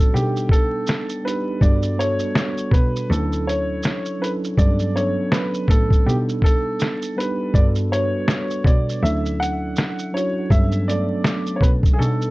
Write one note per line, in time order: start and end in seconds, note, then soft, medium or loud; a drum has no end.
0.00 0.13 A2 medium
0.00 0.16 F#3 medium
0.00 0.15 A3 medium
0.00 0.13 B3 medium
0.00 0.15 C#4 medium
0.00 0.14 D4 medium
0.00 0.15 F#4 medium
0.00 0.15 A4 medium
0.00 shaker soft
0.12 0.80 B2 loud
0.12 1.05 G3 medium
0.12 1.05 B3 medium
0.12 1.06 D4 medium
0.12 1.06 D#4 medium
0.12 0.52 G4 medium
0.16 0.23 G#4 medium
0.16 shaker medium
0.23 1.10 A4 medium
0.36 shaker soft
0.49 1.27 A4 loud
0.49 kick medium
0.49 closed hi-hat medium
0.49 shaker soft
0.87 snare loud
0.87 shaker medium
1.09 shaker soft
1.23 1.55 G3 medium
1.23 1.55 B3 medium
1.23 1.56 D4 medium
1.23 1.57 D#4 medium
1.23 1.63 B4 medium
1.27 1.57 G4 medium
1.27 closed hi-hat medium
1.27 shaker soft
1.60 2.14 G2 loud
1.60 1.92 G3 medium
1.60 1.93 B3 medium
1.60 1.93 D4 medium
1.60 1.94 F#4 medium
1.60 2.00 D5 loud
1.60 kick loud
1.60 shaker medium
1.64 1.94 A4 medium
1.83 shaker soft
1.97 3.09 G3 medium
1.97 3.09 B3 medium
1.97 3.09 D4 medium
1.97 3.10 F#4 medium
1.97 2.75 C#5 loud
1.97 closed hi-hat medium
1.97 shaker soft
2.01 3.11 A4 medium
2.19 shaker soft
2.35 snare loud
2.35 shaker medium
2.58 shaker soft
2.71 3.05 B2 loud
2.71 3.11 B4 medium
2.71 kick loud
2.71 closed hi-hat medium
2.71 shaker medium
2.96 shaker soft
3.08 3.76 D2 loud
3.08 4.01 F#3 medium
3.08 4.02 C#4 medium
3.08 4.02 D4 medium
3.08 4.03 E4 medium
3.08 3.48 A4 medium
3.08 shaker medium
3.13 4.03 A4 medium
3.33 shaker soft
3.47 4.23 C#5 loud
3.47 closed hi-hat medium
3.47 shaker soft
3.83 snare loud
3.83 shaker medium
4.05 shaker soft
4.19 4.51 F#3 medium
4.19 4.52 C#4 medium
4.19 4.52 D4 medium
4.19 4.53 E4 medium
4.19 4.30 B4 medium
4.24 4.53 A4 medium
4.24 closed hi-hat medium
4.24 shaker soft
4.44 shaker soft
4.56 5.11 G2 loud
4.56 4.88 F#3 medium
4.56 4.89 B3 medium
4.56 4.89 C#4 medium
4.56 4.90 D4 medium
4.56 4.96 D5 loud
4.56 kick loud
4.56 shaker medium
4.61 4.90 A4 medium
4.79 shaker soft
4.94 6.05 F#3 medium
4.94 6.05 B3 medium
4.94 6.06 C#4 medium
4.94 6.06 D4 medium
4.94 5.33 C#5 medium
4.94 closed hi-hat medium
4.94 shaker soft
4.98 6.08 A4 medium
5.32 5.70 B4 medium
5.32 snare loud
5.32 shaker medium
5.54 shaker soft
5.68 6.06 A2 medium
5.68 6.07 A4 loud
5.68 kick loud
5.68 closed hi-hat medium
5.68 shaker medium
5.91 kick medium
5.91 shaker soft
6.05 6.73 B2 loud
6.05 6.98 G3 medium
6.05 6.98 B3 medium
6.05 6.99 D4 medium
6.05 6.99 D#4 medium
6.05 6.15 G4 medium
6.09 7.00 A4 medium
6.09 shaker medium
6.29 shaker soft
6.42 7.20 A4 loud
6.42 kick medium
6.42 closed hi-hat medium
6.42 shaker soft
6.80 snare medium
6.80 shaker medium
7.02 shaker soft
7.16 7.48 G3 medium
7.16 7.48 B3 medium
7.16 7.49 D4 medium
7.16 7.49 D#4 medium
7.16 7.56 B4 medium
7.20 7.50 G4 medium
7.20 closed hi-hat medium
7.20 shaker soft
7.53 8.07 G2 loud
7.53 7.85 G3 medium
7.53 7.85 B3 medium
7.53 7.86 D4 medium
7.53 7.86 F#4 medium
7.53 7.63 D5 loud
7.53 kick loud
7.53 shaker medium
7.57 7.87 A4 medium
7.75 shaker soft
7.90 9.02 G3 medium
7.90 9.02 B3 medium
7.90 9.02 D4 medium
7.90 9.03 F#4 medium
7.90 8.68 C#5 loud
7.90 closed hi-hat medium
7.90 shaker soft
7.94 9.04 B4 medium
8.28 snare loud
8.28 shaker medium
8.50 shaker soft
8.64 8.98 B2 loud
8.64 9.00 D5 loud
8.64 kick loud
8.64 closed hi-hat medium
8.64 shaker soft
8.89 shaker soft
9.01 9.69 D2 loud
9.01 9.94 F#3 medium
9.01 9.94 C#4 medium
9.01 9.95 D4 medium
9.01 9.95 E4 medium
9.01 9.41 E5 loud
9.05 9.96 A4 medium
9.05 shaker medium
9.26 shaker soft
9.40 10.16 F#5 loud
9.40 closed hi-hat medium
9.40 shaker soft
9.76 snare loud
9.76 shaker medium
9.99 shaker soft
10.12 10.44 F#3 medium
10.12 10.44 C#4 medium
10.12 10.45 D4 medium
10.12 10.46 E4 medium
10.12 10.52 C#5 medium
10.16 10.46 F#4 medium
10.16 closed hi-hat medium
10.16 shaker soft
10.49 11.04 G2 loud
10.49 10.81 F#3 medium
10.49 10.82 B3 medium
10.49 10.82 C#4 medium
10.49 10.83 D4 medium
10.49 10.89 E5 loud
10.49 kick loud
10.49 shaker medium
10.54 10.83 A4 medium
10.72 shaker soft
10.87 11.98 F#3 medium
10.87 11.99 A3 medium
10.87 11.98 B3 medium
10.87 11.98 D4 medium
10.87 11.58 D5 loud
10.87 closed hi-hat medium
10.87 shaker soft
10.91 12.00 A4 medium
11.24 snare loud
11.24 shaker medium
11.46 shaker soft
11.56 11.62 C#5 medium
11.61 11.94 B2 loud
11.61 11.69 B4 medium
11.61 kick medium
11.61 closed hi-hat medium
11.61 shaker medium
11.83 kick medium
11.83 shaker soft
11.93 11.99 G#4 medium
11.98 12.30 B2 loud
11.98 12.30 G3 medium
11.98 12.30 B3 medium
11.98 12.30 D4 medium
11.98 12.30 D#4 medium
11.98 12.30 A4 loud
12.02 12.30 A4 medium
12.02 shaker medium
12.22 shaker soft